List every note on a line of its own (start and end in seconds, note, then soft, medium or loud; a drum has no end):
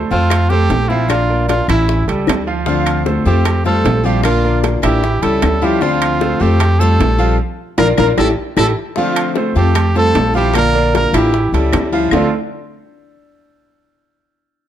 0.11 0.66 F2 loud
0.11 0.44 A3 medium
0.11 0.48 C4 medium
0.11 0.51 F4 loud
0.11 0.44 A4 medium
0.11 0.45 C5 medium
0.11 high bongo soft
0.30 high bongo medium
0.30 high timbale loud
0.30 claves medium
0.49 0.83 A3 medium
0.49 0.89 C4 loud
0.49 0.90 G4 loud
0.49 0.83 A4 medium
0.49 0.84 C5 medium
0.49 high bongo soft
0.70 1.62 A#1 medium
0.70 high bongo soft
0.70 low bongo medium
0.70 high timbale medium
0.70 low timbale medium
0.89 1.06 F3 medium
0.89 1.08 C4 medium
0.89 1.09 E4 medium
0.89 1.07 F4 medium
0.89 1.07 F5 medium
0.89 high bongo soft
1.09 1.26 A#3 medium
1.09 1.46 D4 medium
1.09 1.47 F4 medium
1.09 1.26 A#4 medium
1.09 1.27 D5 medium
1.09 high bongo medium
1.09 high timbale medium
1.09 claves medium
1.30 1.62 A#3 medium
1.30 1.62 A#4 medium
1.30 1.62 D5 medium
1.48 1.67 D4 medium
1.48 1.67 F4 medium
1.48 high bongo medium
1.48 high timbale medium
1.48 low timbale medium
1.68 2.05 A1 loud
1.68 2.01 E3 medium
1.68 2.05 C#4 medium
1.68 2.06 E4 medium
1.68 2.02 E4 medium
1.68 2.02 E5 medium
1.68 high bongo soft
1.68 high timbale medium
1.68 claves medium
1.89 high bongo medium
2.08 2.26 C#2 medium
2.08 2.40 G3 medium
2.08 2.40 G4 medium
2.08 2.40 A4 medium
2.08 high bongo soft
2.08 high timbale medium
2.27 3.20 D2 medium
2.27 high bongo soft
2.27 low bongo medium
2.27 high timbale medium
2.27 low timbale medium
2.27 claves medium
2.47 2.63 F3 medium
2.47 2.64 F4 medium
2.47 2.64 F5 medium
2.47 high bongo soft
2.66 3.25 D3 medium
2.66 2.99 F3 medium
2.66 3.25 A3 medium
2.66 3.26 C4 medium
2.66 3.05 D4 medium
2.66 2.99 F4 medium
2.66 3.04 F4 medium
2.66 3.24 F4 medium
2.66 2.99 F5 medium
2.66 high bongo medium
2.86 high timbale medium
2.86 claves medium
3.06 3.22 A3 medium
3.06 3.22 A4 medium
3.06 3.23 C5 medium
3.06 high bongo medium
3.06 low timbale medium
3.25 3.81 F2 loud
3.25 3.59 A3 medium
3.25 3.46 A3 medium
3.25 3.63 C4 medium
3.25 3.46 C4 medium
3.25 3.45 F4 medium
3.25 3.63 G4 medium
3.25 3.59 A4 medium
3.25 3.59 C5 medium
3.25 high bongo soft
3.45 muted steel-string acoustic guitar stroke medium
3.45 high bongo medium
3.45 high timbale loud
3.45 claves medium
3.64 4.05 G3 soft
3.64 3.98 A3 medium
3.64 4.03 C4 soft
3.64 4.02 F4 medium
3.64 4.05 F4 medium
3.64 3.98 A4 medium
3.64 4.06 A4 medium
3.64 3.98 C5 medium
3.64 high bongo soft
3.85 4.77 A#1 medium
3.85 high bongo soft
3.85 low bongo medium
3.85 high timbale medium
3.85 low timbale medium
4.04 4.21 F3 medium
4.04 4.24 G3 medium
4.04 4.24 C4 medium
4.04 4.25 E4 medium
4.04 4.23 F4 medium
4.04 4.21 F4 medium
4.04 4.23 G4 medium
4.04 4.21 F5 medium
4.04 high bongo soft
4.23 4.82 D3 medium
4.23 4.83 A#3 medium
4.23 4.41 A#3 medium
4.23 4.61 D4 medium
4.23 4.83 D4 medium
4.23 4.61 F4 medium
4.23 4.81 F4 medium
4.23 4.41 A#4 medium
4.23 4.41 D5 medium
4.23 high bongo medium
4.23 high timbale medium
4.23 claves medium
4.44 4.77 A#3 medium
4.44 4.77 A#4 medium
4.44 4.77 D5 medium
4.64 high bongo medium
4.64 high timbale medium
4.64 low timbale medium
4.82 5.20 A1 medium
4.82 5.16 E3 medium
4.82 5.03 A#3 medium
4.82 5.03 D4 medium
4.82 5.20 E4 medium
4.82 5.16 E4 medium
4.82 5.02 F4 medium
4.82 5.24 G4 medium
4.82 5.16 E5 medium
4.82 high bongo soft
4.82 high timbale medium
4.82 claves medium
5.04 muted steel-string acoustic guitar stroke medium
5.04 high bongo medium
5.22 5.41 C#2 medium
5.22 5.55 G3 medium
5.22 5.63 G3 soft
5.22 5.62 C#4 soft
5.22 5.61 E4 medium
5.22 5.55 G4 medium
5.22 5.66 A4 loud
5.22 5.55 A4 medium
5.22 high bongo soft
5.22 high timbale medium
5.42 6.35 D2 medium
5.42 high bongo soft
5.42 low bongo medium
5.42 high timbale medium
5.42 low timbale medium
5.42 claves medium
5.62 5.79 F3 medium
5.62 5.82 G3 medium
5.62 5.82 C#4 medium
5.62 5.81 E4 medium
5.62 5.82 E4 medium
5.62 5.79 F4 medium
5.62 5.83 G4 medium
5.62 5.79 F5 medium
5.62 high bongo soft
5.81 6.40 D3 medium
5.81 6.14 F3 medium
5.81 6.40 A3 medium
5.81 6.40 C4 medium
5.81 6.41 D4 medium
5.81 6.43 F4 loud
5.81 6.14 F4 medium
5.81 6.39 F4 medium
5.81 6.15 F5 medium
5.81 high bongo medium
6.02 high timbale loud
6.02 claves medium
6.21 6.37 A3 medium
6.21 6.37 A4 medium
6.21 6.38 C5 medium
6.21 high bongo medium
6.21 low timbale medium
6.40 6.96 F2 medium
6.40 6.73 A3 medium
6.40 6.60 A3 medium
6.40 6.81 C4 medium
6.40 6.59 C4 medium
6.40 6.59 F4 medium
6.40 6.81 G4 medium
6.40 6.73 A4 medium
6.40 6.73 C5 medium
6.40 high bongo soft
6.60 muted steel-string acoustic guitar stroke medium
6.60 high bongo medium
6.60 high timbale loud
6.60 claves medium
6.79 7.20 G3 soft
6.79 7.12 A3 medium
6.79 7.19 C4 soft
6.79 7.17 F4 medium
6.79 7.40 F4 medium
6.79 7.39 A4 loud
6.79 7.12 A4 medium
6.79 7.12 C5 medium
6.79 high bongo soft
7.00 7.37 A#1 medium
7.00 high bongo soft
7.00 low bongo medium
7.00 high timbale medium
7.00 low timbale medium
7.19 7.36 F3 medium
7.19 7.39 G3 medium
7.19 7.39 C4 medium
7.19 7.38 F4 medium
7.19 7.36 F4 medium
7.19 7.36 F5 medium
7.19 high bongo soft
7.78 7.93 A#1 loud
7.78 7.91 F3 medium
7.78 7.91 A#3 medium
7.78 7.91 D4 loud
7.78 7.91 D4 medium
7.78 7.91 F4 medium
7.78 7.91 F4 loud
7.78 7.91 A#4 loud
7.78 7.88 A#4 loud
7.78 7.91 A#4 medium
7.78 low bongo loud
7.78 high timbale loud
7.78 claves loud
7.97 8.13 A#1 loud
7.97 8.11 F3 loud
7.97 8.11 A#3 loud
7.97 8.10 D4 medium
7.97 8.11 D4 medium
7.97 8.11 F4 medium
7.97 8.11 A#4 medium
7.97 8.08 A#4 medium
7.97 8.11 A#4 medium
7.97 low bongo loud
7.97 high timbale loud
7.97 claves loud
8.17 8.33 A1 loud
8.17 8.31 A3 loud
8.17 8.30 C#4 medium
8.17 8.30 E4 medium
8.17 8.31 E4 medium
8.17 8.30 G4 medium
8.17 8.31 G4 medium
8.17 8.30 A4 loud
8.17 8.28 A4 loud
8.17 8.31 A4 medium
8.17 low bongo loud
8.17 high timbale loud
8.17 claves loud
8.57 8.72 A1 medium
8.57 8.70 A3 medium
8.57 8.70 C#4 medium
8.57 8.70 E4 loud
8.57 8.70 E4 medium
8.57 8.70 G4 loud
8.57 8.71 G4 medium
8.57 8.70 A4 loud
8.57 8.67 A4 loud
8.57 8.70 A4 medium
8.57 low bongo medium
8.57 high timbale medium
8.57 claves medium
8.96 9.55 D3 medium
8.96 9.29 F3 medium
8.96 9.55 A3 medium
8.96 9.56 C4 medium
8.96 9.34 D4 medium
8.96 9.33 F4 medium
8.96 9.29 F4 medium
8.96 9.55 F4 medium
8.96 9.29 F5 medium
8.96 high bongo medium
9.16 high timbale loud
9.16 claves medium
9.36 9.52 A3 medium
9.36 9.52 A4 medium
9.36 9.53 C5 medium
9.36 high bongo medium
9.36 low timbale medium
9.55 10.11 F2 medium
9.55 9.88 A3 medium
9.55 9.76 A3 medium
9.55 9.93 C4 medium
9.55 9.75 C4 medium
9.55 9.75 F4 medium
9.55 9.93 G4 medium
9.55 9.89 A4 medium
9.55 9.89 C5 medium
9.55 high bongo soft
9.75 muted steel-string acoustic guitar stroke medium
9.75 high bongo medium
9.75 high timbale loud
9.75 claves medium
9.95 10.35 G3 soft
9.95 10.28 A3 medium
9.95 10.34 C4 medium
9.95 10.33 F4 medium
9.95 10.32 F4 medium
9.95 10.28 A4 medium
9.95 10.33 A4 loud
9.95 10.28 C5 medium
9.95 high bongo soft
10.15 11.08 A#1 medium
10.15 high bongo soft
10.15 low bongo medium
10.15 high timbale medium
10.15 low timbale medium
10.34 10.51 F3 medium
10.34 10.54 G3 medium
10.34 10.54 C4 medium
10.34 10.54 E4 medium
10.34 10.53 F4 medium
10.34 10.51 F4 medium
10.34 10.54 G4 loud
10.34 10.51 F5 medium
10.34 high bongo soft
10.54 11.13 D3 medium
10.54 10.71 A#3 medium
10.54 11.13 A#3 medium
10.54 11.13 D4 medium
10.54 10.92 F4 medium
10.54 11.12 F4 medium
10.54 10.71 A#4 medium
10.54 10.92 A#4 loud
10.54 10.71 D5 medium
10.54 high bongo medium
10.54 high timbale medium
10.54 claves medium
10.75 11.07 A#3 medium
10.75 11.07 A#4 medium
10.75 11.07 D5 medium
10.95 11.13 F4 medium
10.95 11.13 A#4 loud
10.95 high bongo medium
10.95 high timbale medium
10.95 low timbale medium
11.13 11.50 A1 medium
11.13 11.46 E3 medium
11.13 11.34 A#3 medium
11.13 11.33 D4 medium
11.13 11.51 E4 medium
11.13 11.46 E4 medium
11.13 11.33 F4 medium
11.13 11.52 G4 medium
11.13 11.47 E5 medium
11.13 high bongo soft
11.13 high timbale medium
11.13 claves medium
11.34 muted steel-string acoustic guitar stroke medium
11.34 high bongo medium
11.52 11.71 C#2 medium
11.52 11.86 G3 medium
11.52 11.93 G3 soft
11.52 11.93 C#4 soft
11.52 11.91 E4 soft
11.52 11.86 G4 medium
11.52 11.86 A4 medium
11.52 high bongo soft
11.52 high timbale medium
11.73 12.08 D2 medium
11.73 high bongo soft
11.73 low bongo medium
11.73 high timbale medium
11.73 low timbale medium
11.73 claves medium
11.93 12.09 F3 medium
11.93 12.12 G3 medium
11.93 12.12 C#4 medium
11.93 12.11 E4 medium
11.93 12.09 F4 medium
11.93 12.09 F5 medium
11.93 high bongo soft
12.11 12.30 D2 medium
12.11 12.30 D3 medium
12.11 12.28 D3 medium
12.11 12.31 A3 medium
12.11 12.28 A3 medium
12.11 12.30 C4 medium
12.11 12.29 C4 medium
12.11 12.31 D4 medium
12.11 12.31 F4 medium
12.11 12.29 F4 medium
12.11 12.31 A4 loud
12.11 low bongo medium
12.11 low timbale medium
12.11 claves loud